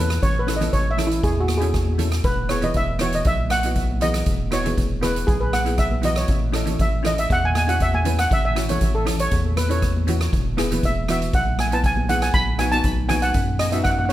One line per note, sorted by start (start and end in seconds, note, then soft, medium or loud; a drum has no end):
0.00 0.19 E2 medium
0.00 0.28 C#4 medium
0.00 0.28 E4 medium
0.00 0.29 A4 medium
0.00 0.21 B4 medium
0.10 cross-stick medium
0.10 closed hi-hat medium
0.22 0.70 A1 medium
0.22 0.30 C#5 medium
0.22 kick loud
0.22 closed hi-hat medium
0.39 0.55 B4 medium
0.47 0.56 C#4 medium
0.47 0.56 E4 medium
0.47 0.57 A4 medium
0.47 cross-stick medium
0.47 closed hi-hat medium
0.56 0.74 D#5 medium
0.61 0.84 C#4 medium
0.61 0.84 E4 medium
0.61 0.85 A4 medium
0.61 closed hi-hat medium
0.61 high conga medium
0.61 low conga medium
0.73 1.21 A1 medium
0.73 0.89 C#5 medium
0.73 kick medium
0.73 closed hi-hat medium
0.91 1.08 E5 medium
0.97 1.37 C#4 medium
0.97 1.37 E4 medium
0.97 1.38 A4 medium
0.97 cross-stick medium
0.97 closed hi-hat medium
0.97 low conga medium
1.07 1.23 E4 medium
1.11 closed hi-hat medium
1.23 2.21 E2 medium
1.23 1.42 G#4 medium
1.23 kick loud
1.23 closed hi-hat medium
1.40 1.57 F#4 medium
1.48 cross-stick medium
1.48 closed hi-hat medium
1.48 high conga medium
1.58 1.84 C#4 medium
1.58 1.85 E4 medium
1.58 2.05 G#4 medium
1.58 closed hi-hat medium
1.63 1.85 A4 medium
1.74 kick medium
1.74 cross-stick medium
1.74 closed hi-hat medium
1.87 high conga medium
1.98 2.24 C#4 medium
1.98 2.25 E4 medium
1.98 2.25 A4 medium
1.98 closed hi-hat medium
1.98 low conga medium
2.12 cross-stick medium
2.12 closed hi-hat medium
2.24 2.72 E1 medium
2.24 2.48 B4 loud
2.24 kick loud
2.24 closed hi-hat medium
2.49 2.58 B3 medium
2.49 2.58 E4 medium
2.49 2.59 G#4 medium
2.49 2.64 C#5 medium
2.49 cross-stick medium
2.49 closed hi-hat medium
2.61 2.85 B3 medium
2.61 2.86 E4 medium
2.61 2.86 B4 medium
2.61 2.75 D#5 medium
2.61 closed hi-hat medium
2.61 high conga medium
2.61 low conga medium
2.74 3.23 E1 loud
2.74 3.02 E5 loud
2.74 kick medium
2.74 closed hi-hat medium
2.99 3.39 B3 medium
2.99 3.39 E4 medium
2.99 3.40 F#4 medium
2.99 3.13 C#5 medium
2.99 cross-stick medium
2.99 closed hi-hat medium
2.99 low conga medium
3.12 3.26 D#5 medium
3.12 closed hi-hat medium
3.25 4.23 B1 loud
3.25 3.38 E5 loud
3.25 kick loud
3.25 closed hi-hat medium
3.50 4.04 F#5 medium
3.50 cross-stick medium
3.50 closed hi-hat medium
3.50 high conga medium
3.63 3.87 B3 medium
3.63 3.88 E4 medium
3.63 3.88 F#4 medium
3.63 closed hi-hat medium
3.75 kick medium
3.75 closed hi-hat medium
3.91 high conga medium
4.01 4.32 B3 medium
4.01 4.33 E4 medium
4.01 4.33 G#4 medium
4.01 4.54 D#5 loud
4.01 closed hi-hat medium
4.01 low conga medium
4.14 cross-stick medium
4.14 closed hi-hat medium
4.26 4.74 E1 medium
4.26 kick loud
4.26 closed hi-hat medium
4.51 4.60 B3 medium
4.51 4.60 E4 medium
4.51 4.61 F#4 medium
4.51 5.00 C#5 medium
4.51 cross-stick medium
4.51 closed hi-hat medium
4.64 4.88 B3 medium
4.64 4.88 E4 medium
4.64 4.89 G#4 medium
4.64 closed hi-hat medium
4.64 high conga medium
4.64 low conga medium
4.77 5.25 E1 medium
4.77 kick medium
4.77 closed hi-hat medium
5.01 5.41 B3 medium
5.01 5.41 E4 medium
5.01 5.42 G#4 medium
5.01 5.29 B4 medium
5.01 cross-stick medium
5.01 closed hi-hat medium
5.01 high conga medium
5.01 low conga medium
5.16 closed hi-hat medium
5.27 6.25 B1 medium
5.27 5.41 G#4 medium
5.27 kick loud
5.27 closed hi-hat medium
5.41 5.54 B4 medium
5.53 5.80 F#5 medium
5.53 cross-stick medium
5.53 closed hi-hat medium
5.53 high conga medium
5.65 5.89 B3 medium
5.65 5.89 E4 medium
5.65 5.90 G#4 medium
5.65 closed hi-hat medium
5.78 6.05 E5 loud
5.78 kick medium
5.78 cross-stick medium
5.78 closed hi-hat medium
5.91 high conga medium
6.02 6.28 B3 medium
6.02 6.29 E4 medium
6.02 6.29 F#4 medium
6.02 6.18 D#5 loud
6.02 closed hi-hat medium
6.02 low conga medium
6.16 6.41 C#5 medium
6.16 cross-stick medium
6.16 closed hi-hat medium
6.28 6.76 A1 medium
6.28 kick loud
6.28 closed hi-hat medium
6.52 6.61 C#4 medium
6.52 6.62 E4 medium
6.52 6.62 A4 loud
6.52 cross-stick medium
6.52 closed hi-hat medium
6.66 6.89 C#4 medium
6.66 6.90 E4 medium
6.66 6.90 A4 medium
6.66 closed hi-hat medium
6.66 high conga medium
6.66 low conga medium
6.79 7.27 A1 medium
6.79 7.06 E5 medium
6.79 kick medium
6.79 closed hi-hat medium
7.03 7.42 C#4 medium
7.03 7.43 E4 medium
7.03 7.43 A4 medium
7.03 7.19 D#5 medium
7.03 cross-stick medium
7.03 closed hi-hat medium
7.03 low conga medium
7.18 7.31 E5 medium
7.18 closed hi-hat medium
7.30 8.27 E2 medium
7.30 7.45 F#5 loud
7.30 kick loud
7.30 closed hi-hat medium
7.45 7.56 G#5 loud
7.55 7.70 G#5 medium
7.55 cross-stick medium
7.55 closed hi-hat medium
7.55 high conga medium
7.67 7.91 C#4 medium
7.67 7.91 E4 medium
7.67 7.92 F#4 medium
7.67 7.81 F#5 medium
7.67 closed hi-hat medium
7.80 7.94 E5 loud
7.80 kick medium
7.80 closed hi-hat medium
7.94 8.20 G#5 medium
7.94 high conga medium
8.05 8.36 C#4 medium
8.05 8.36 E4 medium
8.05 8.37 B4 medium
8.05 closed hi-hat medium
8.05 low conga medium
8.19 8.32 F#5 medium
8.19 cross-stick medium
8.19 closed hi-hat medium
8.31 8.78 A1 medium
8.31 8.44 E5 loud
8.31 kick loud
8.31 closed hi-hat medium
8.45 8.71 E5 medium
8.55 8.64 C#4 medium
8.55 8.64 E4 medium
8.55 8.65 F#4 medium
8.55 cross-stick medium
8.55 closed hi-hat medium
8.69 8.92 C#4 medium
8.69 8.92 E4 medium
8.69 8.93 A4 medium
8.69 8.96 C#5 medium
8.69 closed hi-hat medium
8.69 high conga medium
8.69 low conga medium
8.81 9.29 A1 medium
8.81 kick medium
8.81 closed hi-hat medium
8.95 9.21 A4 medium
9.05 9.45 C#4 medium
9.05 9.45 E4 medium
9.05 9.45 A4 medium
9.05 cross-stick medium
9.05 closed hi-hat medium
9.05 low conga medium
9.19 9.55 C#5 medium
9.19 closed hi-hat medium
9.31 10.29 E2 medium
9.31 kick loud
9.31 closed hi-hat medium
9.57 9.71 B4 medium
9.57 cross-stick medium
9.57 closed hi-hat medium
9.57 high conga medium
9.69 9.92 C#4 medium
9.69 9.93 E4 medium
9.69 9.93 A4 medium
9.69 10.42 C#5 medium
9.69 closed hi-hat medium
9.82 kick medium
9.82 cross-stick medium
9.82 closed hi-hat medium
9.97 high conga medium
10.07 10.33 C#4 medium
10.07 10.33 E4 medium
10.07 10.34 F#4 medium
10.07 closed hi-hat medium
10.07 low conga medium
10.21 cross-stick medium
10.21 closed hi-hat medium
10.33 10.80 E1 loud
10.33 kick loud
10.33 closed hi-hat medium
10.57 10.66 B3 medium
10.57 10.66 E4 medium
10.57 10.66 G#4 loud
10.57 cross-stick medium
10.57 closed hi-hat medium
10.71 10.94 B3 medium
10.71 10.94 E4 medium
10.71 10.95 B4 medium
10.71 closed hi-hat medium
10.71 high conga medium
10.71 low conga medium
10.83 11.31 E1 medium
10.83 11.09 E5 medium
10.83 kick medium
10.83 closed hi-hat medium
11.08 11.47 B3 medium
11.08 11.47 E4 medium
11.08 11.48 F#4 medium
11.08 11.36 E5 medium
11.08 cross-stick medium
11.08 closed hi-hat medium
11.08 low conga medium
11.22 closed hi-hat medium
11.33 12.31 B1 loud
11.33 11.58 F#5 medium
11.33 kick loud
11.33 closed hi-hat medium
11.59 11.73 G#5 medium
11.59 cross-stick medium
11.59 closed hi-hat medium
11.59 high conga medium
11.72 11.95 B3 medium
11.72 11.95 E4 medium
11.72 11.95 B4 medium
11.72 11.85 A5 medium
11.72 closed hi-hat medium
11.84 11.97 G#5 loud
11.84 kick medium
11.84 closed hi-hat medium
11.97 high conga medium
12.09 12.34 B3 medium
12.09 12.35 E4 medium
12.09 12.35 G#4 medium
12.09 12.23 F#5 loud
12.09 closed hi-hat medium
12.09 low conga medium
12.22 12.28 G#5 medium
12.22 cross-stick medium
12.22 closed hi-hat medium
12.34 12.81 B1 loud
12.34 12.60 B5 loud
12.34 kick loud
12.34 closed hi-hat medium
12.59 12.67 B3 medium
12.59 12.68 D#4 medium
12.59 12.68 F#4 medium
12.59 12.73 G#5 medium
12.59 cross-stick medium
12.59 closed hi-hat medium
12.72 12.95 B3 medium
12.72 12.96 D#4 medium
12.72 12.96 F#4 medium
12.72 13.07 A5 loud
12.72 closed hi-hat medium
12.72 high conga medium
12.84 13.32 B1 loud
12.84 kick medium
12.84 closed hi-hat medium
13.09 13.48 B3 medium
13.09 13.48 D#4 medium
13.09 13.49 F#4 medium
13.09 13.23 G#5 loud
13.09 cross-stick medium
13.09 closed hi-hat medium
13.09 high conga medium
13.09 low conga medium
13.22 13.61 F#5 medium
13.22 closed hi-hat medium
13.34 14.13 F#2 medium
13.34 kick loud
13.34 closed hi-hat medium
13.59 13.72 D#5 medium
13.59 cross-stick medium
13.59 closed hi-hat medium
13.59 high conga medium
13.72 13.96 B3 medium
13.72 13.96 D#4 medium
13.72 13.97 F#4 medium
13.72 13.84 E5 medium
13.72 closed hi-hat medium
13.84 13.90 F#5 medium
13.84 kick medium
13.84 cross-stick medium
13.84 closed hi-hat medium
13.91 13.98 F#5 medium
13.99 14.04 F#5 medium
13.99 high conga medium
14.05 14.13 B3 medium
14.05 14.13 C#5 medium
14.05 14.12 F#5 medium
14.10 14.13 D#4 medium